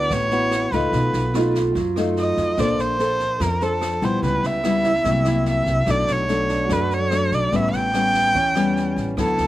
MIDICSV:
0, 0, Header, 1, 6, 480
1, 0, Start_track
1, 0, Tempo, 412088
1, 1086, Time_signature, 4, 2, 24, 8
1, 11032, End_track
2, 0, Start_track
2, 0, Title_t, "Erhu"
2, 0, Program_c, 0, 110
2, 0, Note_on_c, 0, 74, 91
2, 142, Note_on_c, 0, 73, 100
2, 159, Note_off_c, 0, 74, 0
2, 855, Note_on_c, 0, 71, 83
2, 873, Note_off_c, 0, 73, 0
2, 1810, Note_off_c, 0, 71, 0
2, 2553, Note_on_c, 0, 75, 86
2, 3023, Note_on_c, 0, 74, 90
2, 3040, Note_off_c, 0, 75, 0
2, 3266, Note_on_c, 0, 72, 92
2, 3284, Note_off_c, 0, 74, 0
2, 3991, Note_on_c, 0, 70, 81
2, 4008, Note_off_c, 0, 72, 0
2, 4227, Note_on_c, 0, 69, 88
2, 4244, Note_off_c, 0, 70, 0
2, 4713, Note_on_c, 0, 72, 83
2, 4730, Note_off_c, 0, 69, 0
2, 4935, Note_off_c, 0, 72, 0
2, 4942, Note_on_c, 0, 71, 88
2, 5196, Note_on_c, 0, 76, 98
2, 5213, Note_off_c, 0, 71, 0
2, 6379, Note_off_c, 0, 76, 0
2, 6394, Note_on_c, 0, 76, 89
2, 6875, Note_on_c, 0, 74, 96
2, 6892, Note_off_c, 0, 76, 0
2, 7130, Note_on_c, 0, 73, 93
2, 7148, Note_off_c, 0, 74, 0
2, 7831, Note_on_c, 0, 71, 90
2, 7848, Note_off_c, 0, 73, 0
2, 8076, Note_on_c, 0, 73, 101
2, 8094, Note_off_c, 0, 71, 0
2, 8558, Note_on_c, 0, 74, 92
2, 8575, Note_off_c, 0, 73, 0
2, 8804, Note_on_c, 0, 76, 106
2, 8822, Note_off_c, 0, 74, 0
2, 9048, Note_on_c, 0, 79, 114
2, 9066, Note_off_c, 0, 76, 0
2, 10465, Note_off_c, 0, 79, 0
2, 10721, Note_on_c, 0, 69, 96
2, 11032, Note_off_c, 0, 69, 0
2, 11032, End_track
3, 0, Start_track
3, 0, Title_t, "Grand piano"
3, 0, Program_c, 1, 0
3, 0, Control_c, 1, 64, 127
3, 0, Note_on_c, 1, 71, 61
3, 291, Note_off_c, 1, 71, 0
3, 1100, Control_c, 1, 64, 0
3, 1269, Control_c, 1, 64, 127
3, 1577, Note_on_c, 1, 65, 55
3, 2453, Note_off_c, 1, 65, 0
3, 3020, Control_c, 1, 64, 0
3, 5129, Control_c, 1, 64, 127
3, 5648, Note_on_c, 1, 64, 44
3, 5900, Control_c, 1, 64, 0
3, 6092, Note_off_c, 1, 64, 0
3, 6103, Control_c, 1, 64, 127
3, 6856, Control_c, 1, 64, 0
3, 7038, Control_c, 1, 64, 127
3, 7568, Note_on_c, 1, 62, 40
3, 7742, Note_on_c, 1, 66, 39
3, 7914, Note_on_c, 1, 69, 38
3, 8447, Note_off_c, 1, 62, 0
3, 8595, Note_off_c, 1, 66, 0
3, 8741, Note_off_c, 1, 69, 0
3, 8779, Control_c, 1, 64, 0
3, 9011, Control_c, 1, 64, 127
3, 9732, Note_on_c, 1, 61, 51
3, 10609, Note_off_c, 1, 61, 0
3, 10696, Control_c, 1, 64, 0
3, 11032, End_track
4, 0, Start_track
4, 0, Title_t, "Nylon-string guitar"
4, 0, Program_c, 2, 24
4, 0, Note_on_c, 2, 59, 51
4, 0, Note_on_c, 2, 64, 55
4, 0, Note_on_c, 2, 66, 58
4, 135, Note_on_c, 2, 45, 54
4, 332, Note_off_c, 2, 59, 0
4, 336, Note_off_c, 2, 64, 0
4, 336, Note_off_c, 2, 66, 0
4, 369, Note_on_c, 2, 59, 61
4, 372, Note_on_c, 2, 64, 53
4, 378, Note_on_c, 2, 66, 66
4, 809, Note_off_c, 2, 59, 0
4, 811, Note_off_c, 2, 64, 0
4, 812, Note_off_c, 2, 66, 0
4, 853, Note_on_c, 2, 57, 58
4, 860, Note_on_c, 2, 63, 59
4, 863, Note_on_c, 2, 65, 72
4, 1066, Note_off_c, 2, 45, 0
4, 1094, Note_on_c, 2, 47, 57
4, 1531, Note_off_c, 2, 57, 0
4, 1533, Note_off_c, 2, 63, 0
4, 1536, Note_off_c, 2, 65, 0
4, 1583, Note_on_c, 2, 57, 53
4, 1587, Note_on_c, 2, 63, 52
4, 1592, Note_on_c, 2, 65, 54
4, 2025, Note_off_c, 2, 47, 0
4, 2051, Note_off_c, 2, 57, 0
4, 2053, Note_off_c, 2, 63, 0
4, 2055, Note_off_c, 2, 65, 0
4, 2058, Note_on_c, 2, 54, 55
4, 2297, Note_on_c, 2, 57, 60
4, 2302, Note_on_c, 2, 63, 62
4, 2306, Note_on_c, 2, 65, 71
4, 2972, Note_off_c, 2, 57, 0
4, 2975, Note_off_c, 2, 63, 0
4, 2976, Note_off_c, 2, 65, 0
4, 2987, Note_off_c, 2, 54, 0
4, 3008, Note_on_c, 2, 58, 57
4, 3013, Note_on_c, 2, 62, 57
4, 3018, Note_on_c, 2, 69, 53
4, 3023, Note_on_c, 2, 72, 58
4, 3449, Note_off_c, 2, 62, 0
4, 3453, Note_off_c, 2, 69, 0
4, 3455, Note_off_c, 2, 72, 0
4, 3489, Note_on_c, 2, 62, 56
4, 3494, Note_on_c, 2, 69, 55
4, 3502, Note_on_c, 2, 72, 58
4, 3943, Note_off_c, 2, 58, 0
4, 3971, Note_on_c, 2, 53, 56
4, 4168, Note_off_c, 2, 62, 0
4, 4170, Note_off_c, 2, 69, 0
4, 4175, Note_off_c, 2, 72, 0
4, 4208, Note_on_c, 2, 62, 59
4, 4215, Note_on_c, 2, 69, 55
4, 4220, Note_on_c, 2, 72, 66
4, 4647, Note_off_c, 2, 62, 0
4, 4651, Note_off_c, 2, 69, 0
4, 4654, Note_off_c, 2, 72, 0
4, 4684, Note_on_c, 2, 55, 63
4, 4691, Note_on_c, 2, 59, 68
4, 4695, Note_on_c, 2, 64, 64
4, 4903, Note_off_c, 2, 53, 0
4, 4932, Note_on_c, 2, 49, 55
4, 5366, Note_off_c, 2, 55, 0
4, 5368, Note_off_c, 2, 59, 0
4, 5371, Note_off_c, 2, 64, 0
4, 5406, Note_on_c, 2, 55, 59
4, 5410, Note_on_c, 2, 59, 56
4, 5417, Note_on_c, 2, 64, 62
4, 5727, Note_off_c, 2, 55, 0
4, 5730, Note_off_c, 2, 59, 0
4, 5731, Note_off_c, 2, 64, 0
4, 5863, Note_off_c, 2, 49, 0
4, 5880, Note_on_c, 2, 48, 56
4, 5886, Note_on_c, 2, 54, 53
4, 5887, Note_on_c, 2, 58, 55
4, 5895, Note_on_c, 2, 64, 59
4, 6084, Note_off_c, 2, 54, 0
4, 6087, Note_off_c, 2, 58, 0
4, 6089, Note_off_c, 2, 64, 0
4, 6120, Note_on_c, 2, 54, 60
4, 6130, Note_on_c, 2, 58, 59
4, 6134, Note_on_c, 2, 64, 70
4, 6803, Note_off_c, 2, 54, 0
4, 6809, Note_off_c, 2, 58, 0
4, 6809, Note_off_c, 2, 64, 0
4, 6818, Note_off_c, 2, 48, 0
4, 6842, Note_on_c, 2, 47, 55
4, 6842, Note_on_c, 2, 54, 53
4, 6847, Note_on_c, 2, 57, 57
4, 6851, Note_on_c, 2, 62, 64
4, 7283, Note_off_c, 2, 54, 0
4, 7286, Note_off_c, 2, 57, 0
4, 7289, Note_off_c, 2, 62, 0
4, 7325, Note_on_c, 2, 54, 60
4, 7331, Note_on_c, 2, 57, 59
4, 7336, Note_on_c, 2, 62, 61
4, 7766, Note_off_c, 2, 54, 0
4, 7769, Note_off_c, 2, 57, 0
4, 7771, Note_off_c, 2, 62, 0
4, 7779, Note_off_c, 2, 47, 0
4, 7804, Note_on_c, 2, 54, 62
4, 7805, Note_on_c, 2, 42, 56
4, 7807, Note_on_c, 2, 57, 53
4, 7811, Note_on_c, 2, 62, 64
4, 8112, Note_off_c, 2, 54, 0
4, 8114, Note_off_c, 2, 57, 0
4, 8115, Note_off_c, 2, 62, 0
4, 8287, Note_on_c, 2, 54, 49
4, 8294, Note_on_c, 2, 57, 53
4, 8300, Note_on_c, 2, 62, 61
4, 8740, Note_off_c, 2, 42, 0
4, 8747, Note_off_c, 2, 54, 0
4, 8748, Note_off_c, 2, 57, 0
4, 8749, Note_off_c, 2, 62, 0
4, 8767, Note_on_c, 2, 45, 54
4, 8771, Note_on_c, 2, 55, 55
4, 8773, Note_on_c, 2, 59, 58
4, 8779, Note_on_c, 2, 61, 62
4, 9207, Note_off_c, 2, 55, 0
4, 9209, Note_off_c, 2, 59, 0
4, 9212, Note_off_c, 2, 61, 0
4, 9247, Note_on_c, 2, 55, 51
4, 9253, Note_on_c, 2, 59, 55
4, 9256, Note_on_c, 2, 61, 58
4, 9702, Note_off_c, 2, 45, 0
4, 9722, Note_on_c, 2, 52, 56
4, 9723, Note_off_c, 2, 55, 0
4, 9724, Note_off_c, 2, 59, 0
4, 9727, Note_off_c, 2, 61, 0
4, 9966, Note_on_c, 2, 55, 67
4, 9972, Note_on_c, 2, 59, 61
4, 9978, Note_on_c, 2, 61, 65
4, 10646, Note_off_c, 2, 55, 0
4, 10649, Note_off_c, 2, 59, 0
4, 10652, Note_off_c, 2, 61, 0
4, 10659, Note_off_c, 2, 52, 0
4, 10691, Note_on_c, 2, 50, 57
4, 10695, Note_on_c, 2, 54, 57
4, 10698, Note_on_c, 2, 59, 61
4, 10702, Note_on_c, 2, 64, 61
4, 11032, Note_off_c, 2, 50, 0
4, 11032, Note_off_c, 2, 54, 0
4, 11032, Note_off_c, 2, 59, 0
4, 11032, Note_off_c, 2, 64, 0
4, 11032, End_track
5, 0, Start_track
5, 0, Title_t, "Upright bass"
5, 0, Program_c, 3, 32
5, 123, Note_on_c, 3, 33, 95
5, 798, Note_off_c, 3, 33, 0
5, 836, Note_on_c, 3, 37, 88
5, 1064, Note_off_c, 3, 37, 0
5, 1080, Note_on_c, 3, 35, 96
5, 1306, Note_off_c, 3, 35, 0
5, 1323, Note_on_c, 3, 35, 86
5, 1997, Note_off_c, 3, 35, 0
5, 2041, Note_on_c, 3, 42, 96
5, 2716, Note_off_c, 3, 42, 0
5, 2765, Note_on_c, 3, 41, 94
5, 2988, Note_off_c, 3, 41, 0
5, 3001, Note_on_c, 3, 34, 90
5, 3225, Note_off_c, 3, 34, 0
5, 3245, Note_on_c, 3, 34, 80
5, 3918, Note_off_c, 3, 34, 0
5, 3962, Note_on_c, 3, 41, 94
5, 4636, Note_off_c, 3, 41, 0
5, 4684, Note_on_c, 3, 34, 91
5, 4907, Note_off_c, 3, 34, 0
5, 4925, Note_on_c, 3, 37, 96
5, 5148, Note_off_c, 3, 37, 0
5, 5167, Note_on_c, 3, 37, 82
5, 5838, Note_off_c, 3, 37, 0
5, 5877, Note_on_c, 3, 36, 97
5, 6553, Note_off_c, 3, 36, 0
5, 6596, Note_on_c, 3, 36, 89
5, 6823, Note_off_c, 3, 36, 0
5, 6836, Note_on_c, 3, 35, 94
5, 7063, Note_off_c, 3, 35, 0
5, 7085, Note_on_c, 3, 35, 82
5, 7758, Note_off_c, 3, 35, 0
5, 7795, Note_on_c, 3, 42, 96
5, 8472, Note_off_c, 3, 42, 0
5, 8520, Note_on_c, 3, 35, 86
5, 8745, Note_off_c, 3, 35, 0
5, 8762, Note_on_c, 3, 33, 99
5, 8986, Note_off_c, 3, 33, 0
5, 9009, Note_on_c, 3, 33, 82
5, 9679, Note_off_c, 3, 33, 0
5, 9721, Note_on_c, 3, 40, 94
5, 10395, Note_off_c, 3, 40, 0
5, 10443, Note_on_c, 3, 33, 91
5, 10666, Note_off_c, 3, 33, 0
5, 10681, Note_on_c, 3, 38, 94
5, 10905, Note_off_c, 3, 38, 0
5, 10933, Note_on_c, 3, 38, 78
5, 11032, Note_off_c, 3, 38, 0
5, 11032, End_track
6, 0, Start_track
6, 0, Title_t, "Drums"
6, 119, Note_on_c, 9, 37, 57
6, 119, Note_on_c, 9, 38, 23
6, 122, Note_on_c, 9, 36, 59
6, 235, Note_off_c, 9, 37, 0
6, 235, Note_off_c, 9, 38, 0
6, 239, Note_off_c, 9, 36, 0
6, 359, Note_on_c, 9, 38, 24
6, 475, Note_off_c, 9, 38, 0
6, 594, Note_on_c, 9, 37, 59
6, 594, Note_on_c, 9, 38, 24
6, 710, Note_off_c, 9, 37, 0
6, 710, Note_off_c, 9, 38, 0
6, 835, Note_on_c, 9, 38, 25
6, 839, Note_on_c, 9, 36, 25
6, 952, Note_off_c, 9, 38, 0
6, 956, Note_off_c, 9, 36, 0
6, 1076, Note_on_c, 9, 38, 25
6, 1080, Note_on_c, 9, 36, 61
6, 1193, Note_off_c, 9, 38, 0
6, 1197, Note_off_c, 9, 36, 0
6, 1318, Note_on_c, 9, 38, 24
6, 1434, Note_off_c, 9, 38, 0
6, 1559, Note_on_c, 9, 37, 58
6, 1559, Note_on_c, 9, 38, 24
6, 1676, Note_off_c, 9, 37, 0
6, 1676, Note_off_c, 9, 38, 0
6, 1802, Note_on_c, 9, 36, 24
6, 1803, Note_on_c, 9, 38, 25
6, 1918, Note_off_c, 9, 36, 0
6, 1920, Note_off_c, 9, 38, 0
6, 2042, Note_on_c, 9, 38, 23
6, 2043, Note_on_c, 9, 36, 58
6, 2159, Note_off_c, 9, 36, 0
6, 2159, Note_off_c, 9, 38, 0
6, 2283, Note_on_c, 9, 37, 51
6, 2283, Note_on_c, 9, 38, 23
6, 2399, Note_off_c, 9, 37, 0
6, 2399, Note_off_c, 9, 38, 0
6, 2522, Note_on_c, 9, 38, 25
6, 2638, Note_off_c, 9, 38, 0
6, 2762, Note_on_c, 9, 36, 24
6, 2762, Note_on_c, 9, 38, 25
6, 2879, Note_off_c, 9, 36, 0
6, 2879, Note_off_c, 9, 38, 0
6, 2999, Note_on_c, 9, 37, 62
6, 2999, Note_on_c, 9, 38, 23
6, 3002, Note_on_c, 9, 36, 61
6, 3115, Note_off_c, 9, 37, 0
6, 3115, Note_off_c, 9, 38, 0
6, 3118, Note_off_c, 9, 36, 0
6, 3245, Note_on_c, 9, 38, 24
6, 3362, Note_off_c, 9, 38, 0
6, 3486, Note_on_c, 9, 38, 24
6, 3603, Note_off_c, 9, 38, 0
6, 3721, Note_on_c, 9, 38, 24
6, 3722, Note_on_c, 9, 36, 25
6, 3837, Note_off_c, 9, 38, 0
6, 3839, Note_off_c, 9, 36, 0
6, 3962, Note_on_c, 9, 36, 60
6, 3962, Note_on_c, 9, 37, 56
6, 3962, Note_on_c, 9, 38, 23
6, 4078, Note_off_c, 9, 37, 0
6, 4078, Note_off_c, 9, 38, 0
6, 4079, Note_off_c, 9, 36, 0
6, 4201, Note_on_c, 9, 38, 23
6, 4317, Note_off_c, 9, 38, 0
6, 4442, Note_on_c, 9, 37, 61
6, 4442, Note_on_c, 9, 38, 23
6, 4559, Note_off_c, 9, 37, 0
6, 4559, Note_off_c, 9, 38, 0
6, 4682, Note_on_c, 9, 36, 25
6, 4682, Note_on_c, 9, 38, 24
6, 4798, Note_off_c, 9, 38, 0
6, 4799, Note_off_c, 9, 36, 0
6, 4923, Note_on_c, 9, 36, 59
6, 4926, Note_on_c, 9, 38, 23
6, 5040, Note_off_c, 9, 36, 0
6, 5042, Note_off_c, 9, 38, 0
6, 5165, Note_on_c, 9, 38, 23
6, 5281, Note_off_c, 9, 38, 0
6, 5399, Note_on_c, 9, 37, 56
6, 5399, Note_on_c, 9, 38, 25
6, 5516, Note_off_c, 9, 37, 0
6, 5516, Note_off_c, 9, 38, 0
6, 5635, Note_on_c, 9, 38, 24
6, 5639, Note_on_c, 9, 36, 24
6, 5752, Note_off_c, 9, 38, 0
6, 5756, Note_off_c, 9, 36, 0
6, 5873, Note_on_c, 9, 38, 23
6, 5878, Note_on_c, 9, 36, 57
6, 5989, Note_off_c, 9, 38, 0
6, 5994, Note_off_c, 9, 36, 0
6, 6110, Note_on_c, 9, 37, 55
6, 6110, Note_on_c, 9, 38, 22
6, 6227, Note_off_c, 9, 37, 0
6, 6227, Note_off_c, 9, 38, 0
6, 6351, Note_on_c, 9, 38, 23
6, 6468, Note_off_c, 9, 38, 0
6, 6596, Note_on_c, 9, 36, 25
6, 6596, Note_on_c, 9, 38, 23
6, 6712, Note_off_c, 9, 38, 0
6, 6713, Note_off_c, 9, 36, 0
6, 6828, Note_on_c, 9, 37, 62
6, 6828, Note_on_c, 9, 38, 24
6, 6835, Note_on_c, 9, 36, 58
6, 6944, Note_off_c, 9, 37, 0
6, 6944, Note_off_c, 9, 38, 0
6, 6952, Note_off_c, 9, 36, 0
6, 7073, Note_on_c, 9, 38, 23
6, 7189, Note_off_c, 9, 38, 0
6, 7316, Note_on_c, 9, 38, 24
6, 7433, Note_off_c, 9, 38, 0
6, 7555, Note_on_c, 9, 38, 23
6, 7557, Note_on_c, 9, 36, 24
6, 7672, Note_off_c, 9, 38, 0
6, 7674, Note_off_c, 9, 36, 0
6, 7798, Note_on_c, 9, 37, 56
6, 7798, Note_on_c, 9, 38, 25
6, 7799, Note_on_c, 9, 36, 56
6, 7914, Note_off_c, 9, 37, 0
6, 7914, Note_off_c, 9, 38, 0
6, 7915, Note_off_c, 9, 36, 0
6, 8043, Note_on_c, 9, 38, 23
6, 8159, Note_off_c, 9, 38, 0
6, 8280, Note_on_c, 9, 37, 61
6, 8280, Note_on_c, 9, 38, 25
6, 8397, Note_off_c, 9, 37, 0
6, 8397, Note_off_c, 9, 38, 0
6, 8520, Note_on_c, 9, 36, 23
6, 8521, Note_on_c, 9, 38, 24
6, 8636, Note_off_c, 9, 36, 0
6, 8637, Note_off_c, 9, 38, 0
6, 8761, Note_on_c, 9, 36, 59
6, 8761, Note_on_c, 9, 38, 24
6, 8877, Note_off_c, 9, 38, 0
6, 8878, Note_off_c, 9, 36, 0
6, 9003, Note_on_c, 9, 38, 25
6, 9119, Note_off_c, 9, 38, 0
6, 9243, Note_on_c, 9, 37, 61
6, 9243, Note_on_c, 9, 38, 24
6, 9359, Note_off_c, 9, 37, 0
6, 9359, Note_off_c, 9, 38, 0
6, 9481, Note_on_c, 9, 36, 23
6, 9481, Note_on_c, 9, 38, 24
6, 9597, Note_off_c, 9, 36, 0
6, 9598, Note_off_c, 9, 38, 0
6, 9720, Note_on_c, 9, 38, 23
6, 9721, Note_on_c, 9, 36, 59
6, 9837, Note_off_c, 9, 38, 0
6, 9838, Note_off_c, 9, 36, 0
6, 9963, Note_on_c, 9, 37, 57
6, 9963, Note_on_c, 9, 38, 21
6, 10080, Note_off_c, 9, 37, 0
6, 10080, Note_off_c, 9, 38, 0
6, 10208, Note_on_c, 9, 38, 23
6, 10324, Note_off_c, 9, 38, 0
6, 10442, Note_on_c, 9, 36, 24
6, 10448, Note_on_c, 9, 38, 25
6, 10559, Note_off_c, 9, 36, 0
6, 10564, Note_off_c, 9, 38, 0
6, 10682, Note_on_c, 9, 36, 63
6, 10684, Note_on_c, 9, 37, 61
6, 10684, Note_on_c, 9, 38, 24
6, 10799, Note_off_c, 9, 36, 0
6, 10801, Note_off_c, 9, 37, 0
6, 10801, Note_off_c, 9, 38, 0
6, 10919, Note_on_c, 9, 38, 25
6, 11032, Note_off_c, 9, 38, 0
6, 11032, End_track
0, 0, End_of_file